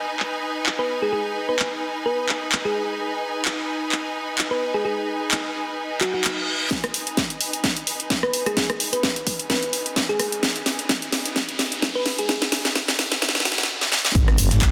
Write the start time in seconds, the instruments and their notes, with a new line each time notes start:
Already playing: string section D#4 B4 G#5
0.20 clap
0.66 clap
0.79 synth pluck B4
1.02 synth pluck G#4
1.13 synth pluck G#4
1.49 synth pluck B4
1.59 clap
2.06 synth pluck B4
2.29 clap
2.52 clap
2.65 synth pluck G#4
3.45 clap
3.92 clap
4.38 clap
4.51 synth pluck B4
4.74 synth pluck G#4
4.85 synth pluck G#4
5.31 clap
5.78 reverse cymbal
6.01 synth pluck F#4, clap
6.14 synth pluck F#4
6.24 clap
6.71 kick, snare, closed hi-hat, riser
6.84 cross-stick, closed hi-hat
6.94 open hi-hat
7.07 closed hi-hat
7.17 kick, snare, closed hi-hat
7.30 closed hi-hat
7.41 open hi-hat
7.53 closed hi-hat
7.64 kick, snare, closed hi-hat
7.77 closed hi-hat
7.87 open hi-hat
8.00 closed hi-hat
8.10 kick, snare, closed hi-hat
8.23 synth pluck B4, cross-stick
8.33 open hi-hat
8.46 synth pluck G#4, cross-stick, closed hi-hat
8.57 synth pluck G#4, kick, snare, closed hi-hat
8.70 cross-stick, closed hi-hat
8.80 open hi-hat
8.93 synth pluck B4, closed hi-hat
9.03 kick, snare, closed hi-hat
9.16 closed hi-hat
9.27 kick, open hi-hat
9.39 closed hi-hat
9.50 synth pluck B4, kick, snare, closed hi-hat
9.63 closed hi-hat
9.73 open hi-hat
9.86 closed hi-hat
9.96 kick, snare, closed hi-hat
10.09 synth pluck G#4
10.20 cross-stick, open hi-hat
10.32 closed hi-hat
10.43 kick, snare, closed hi-hat
10.56 closed hi-hat
10.66 snare, open hi-hat
10.79 closed hi-hat
10.89 kick, snare, closed hi-hat
11.02 closed hi-hat
11.12 snare, open hi-hat
11.25 closed hi-hat
11.36 kick, snare, closed hi-hat
11.49 closed hi-hat
11.59 snare, open hi-hat
11.72 closed hi-hat
11.82 kick, snare, closed hi-hat
11.95 synth pluck B4
12.06 snare, open hi-hat
12.18 synth pluck G#4, closed hi-hat
12.29 synth pluck G#4, kick, snare, closed hi-hat
12.42 snare, closed hi-hat
12.52 snare, open hi-hat
12.65 snare, closed hi-hat
12.75 kick, snare, closed hi-hat
12.88 snare, closed hi-hat
12.99 kick, snare, open hi-hat
13.12 snare, closed hi-hat
13.22 kick, snare, closed hi-hat
13.29 snare
13.35 snare, closed hi-hat
13.40 snare
13.45 synth pluck F#4, snare, open hi-hat
13.52 snare
13.58 synth pluck F#4, snare, closed hi-hat
13.63 snare
13.81 snare
13.92 snare
14.05 snare
14.15 fm bass G#1, kick, closed hi-hat, impact, shaker
14.28 cross-stick, closed hi-hat
14.38 fm bass F#1, closed hi-hat, open hi-hat, shaker
14.51 fm bass G#1, snare, closed hi-hat, shaker
14.61 kick, snare, clap, closed hi-hat, shaker